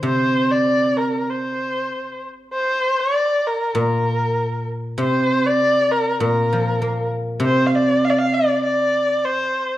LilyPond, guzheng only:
\new Staff \with { instrumentName = "Guzheng" } { \clef bass \time 4/4 \tempo 4 = 98 <c d>2. r4 | r2 bes,2 | c2 bes,8 f8 bes4 | c2. r4 | }